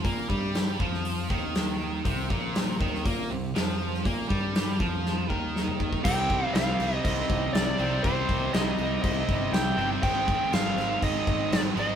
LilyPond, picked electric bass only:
\new Staff \with { instrumentName = "Picked electric bass" } { \clef bass \time 4/4 \key c \minor \tempo 4 = 120 bes,8 g,4 f,4 ees,4. | c,8 bes,,4 ees,8 bes,8 c,8 f,4 | bes,8 g,4 f,4 ees,4. | c,4 c,8 c,8 c,8 c,8 c,8 c,8 |
c,8 c,8 c,8 c,8 c,8 g,,8 c,8 g,,8 | aes,,4 aes,,8 aes,,8 aes,,8 aes,,8 aes,,8 aes,,8 | }